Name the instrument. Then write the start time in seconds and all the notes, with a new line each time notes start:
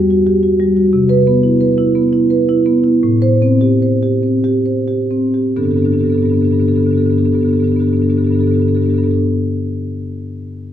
marimba
Already playing: E2 G3
0.10 F#4
0.27 G4
0.43 F#4
0.60 G3
0.77 F#4
0.93 C3
1.09 B4
1.27 B3
1.43 E4
1.61 B4
1.78 E4
1.95 B3
2.13 E4
2.30 B4
2.49 E4
2.66 B3
2.84 E4
3.03 A2
3.22 C5
3.42 C4
3.61 G4
3.82 C5
4.03 G4
4.23 C4
4.44 G4
4.66 C5
4.88 G4
5.11 C4
5.34 G4
5.56 G2 D3 B3 D4 G4 A4
5.63 D3 B3 D4 G4 A4
5.67 G2 G4 A4
5.71 B3 D4
5.76 G2 D3 D4 G4 A4
5.82 G2 D3 B3 D4 G4 A4
5.92 G2 D3 B3 D4 G4 A4
5.99 B3 D4 G4 A4
6.03 G2 D3 G4 A4
6.07 B3 D4
6.12 G2 D3 D4 G4 A4
6.18 B3 G4 A4
6.22 G2 D3 B3 D4 A4
6.29 G2 D3 D4 G4
6.33 B3 D4 G4 A4
6.40 G2 D3 B3 A4
6.44 D4 G4 A4
6.51 G2 D3 B3 D4 G4 A4
6.59 D3 B3 D4 G4 A4
6.63 G2 G4
6.68 G2 D3 B3 D4 A4
6.73 B3 D4 G4 A4
6.78 G2 D3 G4
6.83 D3 B3 D4 A4
6.88 G2 D4 G4 A4
6.93 D3 B3 G4
6.98 G2 B3 D4 A4
7.02 D3 G4 A4
7.06 G2 B3 D4 G4
7.11 D4 A4
7.15 G2 D3 B3 G4 A4
7.19 D4
7.24 G2 D3 B3 D4 G4 A4
7.32 G2 D3 B3 D4 G4 A4
7.39 B3 D4 G4 A4
7.45 G2 D3 D4 A4
7.49 D3 B3 G4 A4
7.54 G2 D4 G4
7.60 G2 D3 B3 A4
7.64 D4 G4 A4
7.68 G2 D3 B3 D4
7.73 G4 A4
7.77 D3 B3 D4 G4
7.82 G2 B3 A4
7.87 D3 D4 G4 A4
7.92 G2 B3 D4 G4
7.97 D3 A4
8.02 G2 B3 D4 G4 A4
8.09 G2 D3 B3 D4 G4 A4
8.17 D3 B3 D4 G4 A4
8.21 G2 G4
8.25 D3 B3 D4 A4
8.31 G2 D4 G4 A4
8.35 D3 B3 G4
8.39 G2 D4 A4
8.43 D3 B3 D4 G4 A4
8.50 G2 B3 G4
8.54 D3 D4 A4
8.60 G2 B3 D4 G4 A4
8.66 G2 D3 B3 D4 G4 A4
8.74 D3 B3 D4 G4 A4
8.79 G2 G4 A4
8.83 D3 B3 D4
8.89 G2 D4 G4 A4
8.94 D3 B3 G4 A4
8.98 G2 D4
9.03 D3 B3 D4 G4 A4
9.08 G2 B3 G4 A4
9.14 D4